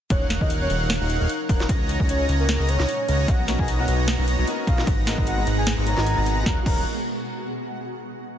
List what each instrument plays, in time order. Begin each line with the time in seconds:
0.10 analog synth bass D#1, ambient pad C#3 F#3 D#4, supersaw synth D#4 A#4 C#5 F5 F#5, soft synth lead C#5, digital synth lead F#6, kick, closed hi-hat
0.30 snare, closed hi-hat
0.41 analog synth bass D#1, supersaw synth D#4 A#4 C#5 F5 F#5, soft synth lead D#5, digital synth lead F#6, kick
0.50 closed hi-hat
0.61 soft synth lead C#5
0.70 analog synth bass D#1, supersaw synth D#4 A#4 C#5 F5 F#5, digital synth lead F#6, closed hi-hat
0.90 snare, closed hi-hat
1.01 analog synth bass D#1, supersaw synth D#4 A#4 C#5 F5 F#5, digital synth lead F#6
1.10 closed hi-hat
1.20 analog synth bass D#1, supersaw synth D#4 A#4 C#5 F5 F#5, digital synth lead F#6
1.29 closed hi-hat
1.49 analog synth bass D#1, supersaw synth D#4 A#4 C#5 F5 F#5, soft synth lead A#4, digital synth lead F#6, kick, closed hi-hat
1.60 snare
1.69 analog synth bass C#2, ambient pad A#2 G#3, supersaw synth C#4 C#5 D#5 F#5 G#5 A#5, digital synth lead A#6, kick, closed hi-hat
1.89 closed hi-hat
2.00 analog synth bass C#2, supersaw synth C#4 C#5 D#5 F#5 G#5 A#5, digital synth lead A#6, kick
2.09 soft synth lead C#5, closed hi-hat
2.29 analog synth bass C#2, supersaw synth C#4 C#5 D#5 F#5 G#5 A#5, digital synth lead A#6, closed hi-hat
2.40 soft synth lead A#4
2.49 snare, closed hi-hat
2.60 analog synth bass C#2, supersaw synth C#4 C#5 D#5 F#5 G#5 A#5, digital synth lead A#6
2.69 soft synth lead C#5, closed hi-hat
2.79 analog synth bass C#2, supersaw synth C#4 C#5 D#5 F#5 G#5 A#5, digital synth lead A#6, snare
2.89 closed hi-hat
3.08 analog synth bass C#2, supersaw synth C#4 C#5 D#5 F#5 G#5 A#5, digital synth lead A#6, closed hi-hat
3.28 analog synth bass B1, ambient pad B2 A#3 D#4, supersaw synth B3 F#4 C#5 D#5 A#5, soft synth lead F#5, digital synth lead A#6, kick, closed hi-hat
3.47 grand piano B3 C#4 D#4 F#4 A#4, snare, closed hi-hat
3.59 analog synth bass B1, supersaw synth B3 F#4 C#5 D#5 A#5, soft synth lead G#5, digital synth lead A#6, kick
3.68 closed hi-hat
3.78 grand piano B3 C#4 D#4 F#4 A#4, soft synth lead F#5
3.88 analog synth bass B1, supersaw synth B3 F#4 C#5 D#5 A#5, digital synth lead A#6, closed hi-hat
4.08 snare, closed hi-hat
4.18 analog synth bass B1, grand piano B3 C#4 D#4 F#4 A#4, supersaw synth B3 F#4 C#5 D#5 A#5, digital synth lead A#6
4.28 closed hi-hat
4.38 analog synth bass B1, supersaw synth B3 F#4 C#5 D#5 A#5, digital synth lead A#6
4.47 grand piano B3 C#4 D#4 F#4 A#4, closed hi-hat
4.67 analog synth bass B1, supersaw synth B3 F#4 C#5 D#5 A#5, soft synth lead F5, digital synth lead A#6, kick, closed hi-hat
4.78 grand piano B3 C#4 D#4 F#4 A#4, snare
4.87 analog synth bass G#1, ambient pad B2 G#3 F#4, supersaw synth G#3 D#4 B4 F#5 A#5, digital synth lead A#6, kick, closed hi-hat
5.06 grand piano G#3 B3 D#4 F#4 A#4, snare, closed hi-hat
5.18 analog synth bass G#1, supersaw synth G#3 D#4 B4 F#5 A#5, digital synth lead A#6, kick
5.27 soft synth lead F#5, closed hi-hat
5.37 grand piano G#3 B3 D#4 F#4 A#4
5.47 analog synth bass G#1, supersaw synth G#3 D#4 B4 F#5 A#5, digital synth lead A#6, closed hi-hat
5.58 soft synth lead G#5
5.67 snare, closed hi-hat
5.77 analog synth bass G#1, grand piano G#3 B3 D#4 F#4 A#4, supersaw synth G#3 D#4 B4 F#5 A#5, digital synth lead A#6
5.86 grand piano G#3 B3 D#4 F#4 C#5, soft synth lead A#5, closed hi-hat
5.97 analog synth bass G#1, grand piano G#3 B3 D#4 F#4 A#4, supersaw synth G#3 D#4 B4 F#5 G#5, digital synth lead G#6, snare
6.07 closed hi-hat
6.17 analog synth bass G#1, grand piano G#3 B3 D#4 F#4 G#4, supersaw synth G#3 D#4 B4 F#5 A#5, digital synth lead A#6
6.26 closed hi-hat
6.43 analog synth bass D#1, grand piano F#3 C#4 D#4, supersaw synth D#4 A#4 C#5 F5 F#5, soft synth lead A#5, digital synth lead F#6, kick, snare
6.48 grand piano F4 A#4
6.63 analog synth bass D#1, grand piano F#3 C#4 D#4, supersaw synth D#4 A#4 C#5 F5 F#5, soft synth lead A#5, digital synth lead F#6, kick, crash
6.68 grand piano F4 A#4